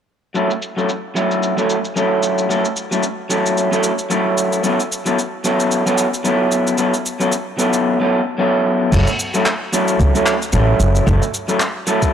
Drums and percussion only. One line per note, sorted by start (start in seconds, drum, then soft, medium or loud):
0.35 cabasa soft
0.50 cabasa soft
0.62 cabasa medium
0.78 cabasa soft
0.89 cabasa medium
1.16 cabasa medium
1.31 cabasa soft
1.43 cabasa soft
1.58 cabasa soft
1.70 cabasa medium
1.85 cabasa soft
1.97 cabasa medium
2.23 cabasa medium
2.38 cabasa soft
2.51 cabasa soft
2.65 cabasa soft
2.76 cabasa medium
2.92 cabasa soft
3.03 cabasa medium
3.30 cabasa medium
3.46 cabasa medium
3.57 cabasa medium
3.73 cabasa soft
3.83 cabasa medium
3.99 cabasa soft
4.11 cabasa medium
4.38 cabasa medium
4.53 cabasa soft
4.64 cabasa medium
4.80 cabasa soft
4.92 cabasa medium
5.06 cabasa soft
5.19 cabasa medium
5.45 cabasa medium
5.60 cabasa soft
5.71 cabasa medium
5.87 cabasa soft
5.98 cabasa loud
6.14 cabasa soft
6.25 cabasa medium
6.52 cabasa medium
6.67 cabasa soft
6.78 cabasa medium
6.94 cabasa soft
7.06 cabasa medium
7.21 cabasa soft
7.32 cabasa medium
7.59 cabasa medium
7.73 cabasa soft
8.92 kick loud
8.92 crash medium
8.92 cabasa medium
9.07 cabasa soft
9.19 cabasa medium
9.34 cabasa soft
9.45 clap medium
9.45 cabasa medium
9.73 cabasa medium
9.88 cabasa soft
10.00 kick loud
10.00 cabasa medium
10.15 cabasa soft
10.26 clap medium
10.26 cabasa medium
10.42 cabasa soft
10.53 cabasa medium
10.80 cabasa medium
10.95 cabasa soft
11.07 kick loud
11.07 cabasa soft
11.22 cabasa soft
11.34 cabasa medium
11.49 cabasa soft
11.60 clap medium
11.60 cabasa medium
11.87 cabasa medium
12.02 kick medium
12.02 cabasa soft